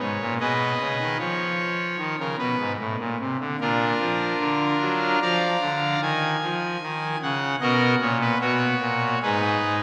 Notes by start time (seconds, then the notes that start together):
0.00 G#2 C#5
0.21 A#2
0.40 B2 G#4 B4 D#5
0.80 C#3
1.00 D#3
1.19 F3 C#5
1.99 D#3
2.19 C#3 A#4
2.38 B2 B4
2.59 G#2
2.80 A2
3.00 A#2
3.20 C3
3.40 D3
3.60 A#2 D4 F4 A#4
3.99 F3
4.40 D3
4.81 F#3
5.21 F3 D5 F5 A#5
5.61 D3
6.01 D#3 G#5
6.43 F3
6.82 D#3
7.22 C#3 F#5
7.61 B2 F#4 A#4 D#5
8.01 A#2 C#5
8.21 B4
8.41 B2 F#4 C#5
8.81 A#2
9.22 G#2 D#4 G#4 B4
9.65 G#2